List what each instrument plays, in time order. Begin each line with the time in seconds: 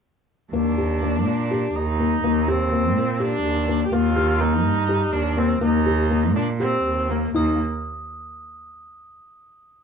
0.52 cello D#2, felt piano A#3, viola D4
0.78 felt piano G4
1.02 felt piano A#3
1.26 cello A#2
1.51 felt piano G4
1.74 cello D#2, viola D#4
1.99 felt piano A#3
2.23 cello D#2, felt piano A#3
2.48 viola C4, felt piano G4
2.72 felt piano A#3
2.96 cello A#2
3.20 viola D4, felt piano G4
3.44 cello D#2
3.68 felt piano A#3
3.86 viola G4
3.92 cello D#2, felt piano A#3, viola F4
4.16 felt piano G4, glockenspiel F6
4.40 felt piano A#3, viola D#4
4.65 cello G2
4.89 felt piano G4
5.13 cello D#2, viola D4
5.37 felt piano A#3, viola C4
5.61 cello D#2, felt piano A#3, viola D#4
5.86 felt piano G4
6.10 felt piano A#3
6.35 cello A#2, viola D4
6.60 viola C4, felt piano G4
6.85 cello D#2
7.09 felt piano A#3, viola A#3
7.34 cello D#2, viola A#3, felt piano D#4, glockenspiel D#6